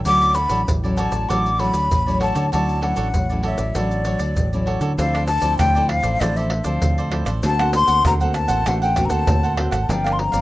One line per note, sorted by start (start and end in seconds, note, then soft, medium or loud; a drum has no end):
0.05 0.46 D2 medium
0.05 0.65 D3 medium
0.05 0.35 F#3 medium
0.05 0.35 C#4 soft
0.05 0.35 E4 medium
0.05 0.34 F#4 medium
0.05 0.35 A4 medium
0.05 0.35 C#5 medium
0.05 0.36 D5 medium
0.05 0.37 D6 loud
0.05 pandeiro medium
0.05 shaker medium
0.05 surdo medium
0.22 pandeiro soft
0.22 shaker soft
0.35 0.48 F#4 soft
0.35 0.49 A4 soft
0.35 0.49 C#5 soft
0.35 0.49 D5 medium
0.35 0.71 B5 medium
0.35 pandeiro medium
0.35 shaker medium
0.49 0.64 A1 medium
0.49 0.77 F#3 soft
0.49 0.77 C#4 medium
0.49 0.78 E4 medium
0.49 0.60 F#4 medium
0.49 0.60 A4 medium
0.49 0.61 C#5 medium
0.49 0.61 D5 medium
0.49 pandeiro medium
0.49 shaker medium
0.67 1.08 A1 medium
0.67 1.26 A2 medium
0.67 pandeiro medium
0.67 shaker medium
0.67 surdo medium
0.83 1.25 F#3 medium
0.83 1.25 C#4 medium
0.83 1.25 E4 medium
0.83 0.96 A4 soft
0.83 0.97 C#5 soft
0.83 0.97 D5 medium
0.83 pandeiro soft
0.83 shaker soft
0.97 1.12 F#4 medium
0.97 1.12 A4 medium
0.97 1.11 C#5 medium
0.97 1.10 D5 medium
0.97 1.31 A5 medium
0.97 pandeiro medium
0.97 shaker medium
1.11 1.26 A1 medium
1.11 1.28 A4 soft
1.11 1.28 C#5 soft
1.11 1.27 D5 soft
1.11 pandeiro medium
1.11 shaker medium
1.28 1.69 A1 medium
1.28 1.88 D3 soft
1.28 1.48 F#3 soft
1.28 1.48 C#4 soft
1.28 1.48 E4 medium
1.28 1.58 F#4 medium
1.28 1.58 A4 medium
1.28 1.59 C#5 medium
1.28 1.59 D5 medium
1.28 1.61 D6 medium
1.28 pandeiro medium
1.28 shaker medium
1.28 surdo medium
1.46 pandeiro soft
1.46 shaker soft
1.59 1.89 F#3 medium
1.59 1.89 C#4 medium
1.59 1.89 E4 medium
1.59 1.74 F#4 soft
1.59 1.74 A4 medium
1.59 1.73 C#5 soft
1.59 1.72 D5 medium
1.59 2.21 B5 loud
1.59 pandeiro medium
1.73 1.88 D2 medium
1.73 2.05 A4 soft
1.73 2.05 C#5 soft
1.73 2.04 D5 soft
1.73 pandeiro medium
1.73 shaker medium
1.91 2.31 A1 medium
1.91 2.50 A2 medium
1.91 pandeiro medium
1.91 shaker medium
1.91 surdo loud
2.06 2.48 F#3 medium
2.06 2.48 C#4 medium
2.06 2.49 E4 medium
2.06 2.19 A4 soft
2.06 2.20 C#5 soft
2.06 2.21 D5 soft
2.06 pandeiro soft
2.06 shaker soft
2.20 2.33 F#4 medium
2.20 2.34 A4 medium
2.20 2.34 C#5 medium
2.20 2.35 D5 medium
2.20 2.50 A5 medium
2.20 pandeiro medium
2.35 2.50 D3 medium
2.35 2.45 F#4 medium
2.35 2.45 A4 medium
2.35 2.46 C#5 medium
2.35 2.46 D5 medium
2.35 pandeiro medium
2.35 shaker medium
2.52 2.93 D2 medium
2.52 3.11 D3 soft
2.52 2.79 F#3 medium
2.52 2.79 C#4 soft
2.52 2.79 E4 medium
2.52 2.80 F#4 medium
2.52 2.81 A4 medium
2.52 2.81 C#5 medium
2.52 2.82 D5 medium
2.52 2.85 A5 medium
2.52 pandeiro medium
2.52 shaker medium
2.52 surdo medium
2.69 pandeiro soft
2.69 shaker soft
2.81 3.25 F#3 medium
2.81 3.25 C#4 medium
2.81 3.25 E4 medium
2.81 2.95 F#4 soft
2.81 2.95 A4 medium
2.81 2.96 C#5 soft
2.81 2.96 D5 soft
2.81 3.45 F#5 medium
2.81 pandeiro medium
2.96 3.11 A1 medium
2.96 3.07 F#4 medium
2.96 3.07 A4 medium
2.96 3.07 C#5 medium
2.96 3.07 D5 medium
2.96 pandeiro medium
2.96 shaker medium
3.14 3.54 A1 medium
3.14 3.73 A2 soft
3.14 pandeiro medium
3.14 shaker medium
3.14 surdo medium
3.29 3.72 F#3 medium
3.29 3.72 C#4 medium
3.29 3.72 E4 medium
3.29 3.42 A4 soft
3.29 3.43 C#5 soft
3.29 3.43 D5 soft
3.29 pandeiro soft
3.29 shaker soft
3.43 3.58 F#4 medium
3.43 3.58 A4 medium
3.43 3.57 C#5 medium
3.43 3.56 D5 medium
3.43 3.78 E5 medium
3.43 pandeiro medium
3.57 3.73 A1 medium
3.57 3.74 A4 soft
3.57 3.74 C#5 soft
3.57 3.73 D5 soft
3.57 pandeiro medium
3.57 shaker medium
3.75 4.15 A1 medium
3.75 4.35 D3 soft
3.75 4.02 F#3 soft
3.75 4.02 C#4 soft
3.75 4.03 E4 soft
3.75 4.03 F#4 medium
3.75 4.04 A4 medium
3.75 4.05 C#5 medium
3.75 4.68 D5 medium
3.75 4.05 D5 medium
3.75 pandeiro medium
3.75 shaker medium
3.75 surdo medium
3.91 pandeiro soft
3.91 shaker soft
4.05 4.48 F#3 medium
4.05 4.48 E4 medium
4.05 4.20 F#4 soft
4.05 4.19 A4 medium
4.05 4.19 C#5 medium
4.05 4.18 D5 medium
4.05 pandeiro medium
4.05 shaker medium
4.19 4.34 D2 medium
4.19 4.51 A4 soft
4.19 4.51 C#5 soft
4.19 4.50 D5 medium
4.19 pandeiro medium
4.19 shaker medium
4.36 4.76 A1 medium
4.36 4.96 A2 medium
4.36 pandeiro medium
4.36 shaker medium
4.36 surdo medium
4.53 4.94 F#3 medium
4.53 4.95 C#4 medium
4.53 4.95 E4 medium
4.53 4.66 A4 soft
4.53 4.66 C#5 soft
4.53 4.67 D5 soft
4.53 pandeiro soft
4.53 shaker soft
4.66 4.79 F#4 medium
4.66 4.80 A4 medium
4.66 4.80 C#5 medium
4.66 4.81 D5 medium
4.66 pandeiro medium
4.81 4.95 D3 medium
4.81 4.91 F#4 medium
4.81 4.91 A4 medium
4.81 4.92 C#5 medium
4.81 4.92 D5 medium
4.81 pandeiro soft
4.81 shaker medium
4.98 5.38 D2 loud
4.98 5.57 D3 medium
4.98 5.28 F3 medium
4.98 5.28 C4 medium
4.98 5.28 E4 medium
4.98 5.12 F4 soft
4.98 5.13 A4 soft
4.98 5.13 C5 medium
4.98 5.12 D5 medium
4.98 5.26 F5 medium
4.98 pandeiro medium
4.98 shaker medium
4.98 surdo medium
5.14 5.27 A4 soft
5.14 5.27 C5 medium
5.14 5.27 D5 medium
5.14 pandeiro soft
5.14 tamborim medium
5.14 shaker soft
5.27 5.57 A5 loud
5.27 muted cavaquinho stroke soft
5.27 pandeiro medium
5.27 shaker medium
5.41 5.57 D2 medium
5.41 5.70 F3 medium
5.41 5.70 C4 medium
5.41 5.70 E4 medium
5.41 5.58 A4 soft
5.41 5.58 C5 medium
5.41 5.57 D5 medium
5.41 pandeiro medium
5.41 shaker medium
5.59 5.99 D2 loud
5.59 6.19 A2 medium
5.59 5.74 F4 medium
5.59 5.74 A4 soft
5.59 5.75 C5 soft
5.59 5.74 D5 medium
5.59 5.90 G5 loud
5.59 pandeiro medium
5.59 tamborim medium
5.59 shaker medium
5.59 surdo loud
5.75 6.17 F3 medium
5.75 6.17 C4 medium
5.75 6.18 E4 medium
5.75 5.88 A4 medium
5.75 5.89 C5 medium
5.75 5.89 D5 medium
5.75 pandeiro soft
5.75 shaker soft
5.89 6.22 F5 medium
5.89 muted cavaquinho stroke soft
5.89 pandeiro medium
5.89 tamborim medium
6.03 6.18 A1 medium
6.03 6.20 A4 medium
6.03 6.19 C5 medium
6.03 6.19 D5 medium
6.03 pandeiro medium
6.03 shaker medium
6.20 6.60 A1 loud
6.20 6.80 D3 soft
6.20 6.50 F3 medium
6.20 6.51 C4 medium
6.20 6.51 E4 medium
6.20 6.35 F4 soft
6.20 6.36 A4 medium
6.20 6.36 C5 medium
6.20 6.38 D5 medium
6.20 6.36 D5 medium
6.20 pandeiro medium
6.20 tamborim medium
6.20 shaker medium
6.20 surdo medium
6.37 6.65 A4 medium
6.37 6.64 C5 medium
6.37 6.63 D5 medium
6.37 6.66 E5 medium
6.37 pandeiro soft
6.37 shaker soft
6.50 pandeiro medium
6.50 tamborim medium
6.64 6.79 D2 medium
6.64 7.08 F3 medium
6.64 7.08 C4 medium
6.64 6.96 A4 medium
6.64 6.96 C5 medium
6.64 6.95 D5 medium
6.64 7.12 F5 medium
6.64 pandeiro medium
6.64 shaker medium
6.82 7.22 D2 medium
6.82 7.42 A2 medium
6.82 pandeiro medium
6.82 shaker medium
6.82 surdo medium
6.98 7.10 A4 medium
6.98 7.11 C5 medium
6.98 7.11 D5 medium
6.98 pandeiro soft
6.98 shaker soft
7.11 7.31 F3 medium
7.11 7.31 C4 soft
7.11 7.31 E4 medium
7.11 7.26 F4 soft
7.11 7.26 A4 soft
7.11 7.25 C5 soft
7.11 7.24 D5 medium
7.11 pandeiro medium
7.11 tamborim medium
7.25 7.40 A1 medium
7.25 7.42 A4 medium
7.25 7.42 C5 medium
7.25 7.41 D5 medium
7.25 pandeiro medium
7.25 tamborim medium
7.25 shaker medium
7.43 7.83 D2 loud
7.43 8.02 D3 medium
7.43 7.53 A#3 medium
7.43 7.53 C4 medium
7.43 7.58 D4 soft
7.43 7.54 F#4 medium
7.43 7.58 A4 medium
7.43 7.59 C5 medium
7.43 7.58 F#5 medium
7.43 7.74 A5 loud
7.43 pandeiro medium
7.43 shaker medium
7.43 surdo medium
7.59 8.01 A#3 medium
7.59 8.01 C4 medium
7.59 8.01 F#4 medium
7.59 7.73 A4 soft
7.59 7.73 C5 medium
7.59 7.73 F#5 medium
7.59 pandeiro soft
7.59 tamborim medium
7.59 shaker soft
7.73 8.04 C6 loud
7.73 muted cavaquinho stroke soft
7.73 pandeiro medium
7.73 shaker medium
7.87 8.02 D2 medium
7.87 8.04 A4 medium
7.87 8.03 C5 medium
7.87 8.03 F#5 medium
7.87 pandeiro medium
7.87 shaker medium
8.05 8.45 D2 medium
8.05 8.14 A#3 medium
8.05 8.15 C4 soft
8.05 8.19 D4 medium
8.05 8.15 F#4 medium
8.05 8.20 A4 medium
8.05 8.20 C5 medium
8.05 8.20 F#5 medium
8.05 8.13 A#5 loud
8.05 pandeiro medium
8.05 tamborim medium
8.05 shaker medium
8.05 surdo medium
8.20 8.62 A#3 medium
8.20 8.62 C4 medium
8.20 8.62 F#4 medium
8.20 8.33 A4 medium
8.20 8.34 C5 medium
8.20 8.34 F#5 medium
8.20 pandeiro soft
8.20 shaker soft
8.34 8.69 A5 medium
8.34 muted cavaquinho stroke soft
8.34 pandeiro medium
8.34 tamborim medium
8.34 shaker medium
8.48 8.63 A1 medium
8.48 8.65 A4 medium
8.48 8.64 C5 medium
8.48 8.64 F#5 medium
8.48 pandeiro medium
8.48 shaker medium
8.66 9.06 A1 loud
8.66 9.25 D3 medium
8.66 8.85 A#3 medium
8.66 8.85 C4 medium
8.66 8.80 D4 medium
8.66 8.85 F#4 medium
8.66 8.81 A4 medium
8.66 8.81 C5 soft
8.66 8.82 F#5 medium
8.66 8.81 F#5 medium
8.66 pandeiro medium
8.66 tamborim medium
8.66 shaker medium
8.66 surdo medium
8.82 9.10 A4 medium
8.82 9.09 C5 medium
8.82 9.08 F#5 medium
8.82 9.07 G5 medium
8.82 pandeiro soft
8.82 shaker soft
8.96 9.53 A#3 medium
8.96 9.54 C4 medium
8.96 9.54 F#4 medium
8.96 pandeiro medium
8.96 tamborim medium
8.96 shaker medium
8.96 surdo medium
9.05 9.40 F#5 medium
9.05 9.12 A#5 medium
9.10 9.25 D2 medium
9.10 9.41 A4 medium
9.10 9.41 C5 medium
9.10 9.57 A5 medium
9.10 pandeiro medium
9.10 shaker medium
9.27 9.68 D2 medium
9.27 9.86 A2 medium
9.27 pandeiro medium
9.27 shaker medium
9.27 surdo loud
9.43 9.56 A4 medium
9.43 9.57 C5 medium
9.43 9.57 F#5 medium
9.43 pandeiro soft
9.43 shaker soft
9.57 9.78 A#3 soft
9.57 9.78 C4 soft
9.57 9.72 D4 soft
9.57 9.78 F#4 medium
9.57 9.72 A4 soft
9.57 9.71 C5 soft
9.57 9.70 F#5 medium
9.57 pandeiro medium
9.57 tamborim medium
9.71 9.86 G#1 medium
9.71 9.88 A4 medium
9.71 9.87 C5 medium
9.71 9.87 F#5 medium
9.71 pandeiro medium
9.71 tamborim medium
9.71 shaker medium
9.82 9.93 A5 medium
9.89 10.28 G1 loud
9.89 10.41 G2 medium
9.89 10.31 F3 medium
9.89 10.31 A#3 medium
9.89 10.31 C4 medium
9.89 10.03 G4 medium
9.89 10.03 A#4 medium
9.89 10.04 D5 medium
9.89 10.03 F5 medium
9.89 10.14 G5 medium
9.89 pandeiro medium
9.89 shaker medium
9.89 surdo medium
10.04 10.18 A#4 medium
10.04 10.18 D5 medium
10.04 10.18 F5 medium
10.04 pandeiro soft
10.04 tamborim medium
10.04 shaker soft
10.12 10.21 C6 medium
10.18 10.41 A#5 medium
10.18 muted cavaquinho stroke soft
10.18 pandeiro medium
10.32 10.41 G1 medium
10.32 10.41 F3 medium
10.32 10.41 A#3 medium
10.32 10.41 C4 medium
10.32 10.41 A#4 medium
10.32 10.41 D5 medium
10.32 10.41 F5 medium
10.32 pandeiro medium
10.32 shaker medium